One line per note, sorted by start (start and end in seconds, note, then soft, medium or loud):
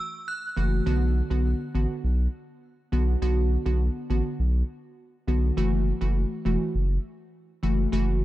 0.28 0.69 F#6 medium
0.57 0.81 F#1 medium
0.57 0.84 E3 medium
0.57 0.84 A3 medium
0.57 0.84 F#4 medium
0.86 1.22 B1 loud
0.86 1.27 D3 medium
0.86 1.27 B3 medium
0.86 1.27 F#4 loud
1.30 1.54 B1 loud
1.30 1.46 D3 medium
1.30 1.46 B3 medium
1.30 1.47 F#4 medium
1.74 1.86 A1 medium
1.74 1.91 D3 medium
1.74 1.91 B3 medium
1.74 1.91 F#4 medium
2.04 2.28 B1 loud
2.92 3.16 B1 medium
2.92 3.19 D3 medium
2.92 3.19 B3 medium
2.92 3.20 F#4 medium
3.22 3.57 B1 loud
3.22 3.62 D3 medium
3.22 3.62 B3 medium
3.22 3.63 F#4 loud
3.66 3.89 B1 medium
3.66 3.82 D3 medium
3.66 3.82 B3 medium
3.66 3.82 F#4 medium
4.10 4.22 A1 loud
4.10 4.26 D3 medium
4.10 4.26 B3 medium
4.10 4.26 F#4 medium
4.39 4.63 B1 loud
5.28 5.51 B1 loud
5.28 5.55 D3 medium
5.28 5.55 B3 medium
5.28 5.55 F#4 medium
5.57 5.92 F#1 loud
5.57 5.98 E3 loud
5.57 5.98 A3 medium
5.57 5.98 F#4 loud
6.01 6.25 F#1 medium
6.01 6.17 E3 medium
6.01 6.17 A3 medium
6.01 6.17 F#4 medium
6.45 6.57 E1 medium
6.45 6.61 E3 medium
6.45 6.61 A3 medium
6.45 6.62 F#4 medium
6.75 6.98 F#1 loud
7.63 7.87 F#1 medium
7.63 7.90 E3 medium
7.63 7.90 A3 medium
7.63 7.90 F#4 medium
7.92 8.25 F#1 loud
7.92 8.25 E3 loud
7.92 8.25 A3 medium
7.92 8.25 F#4 loud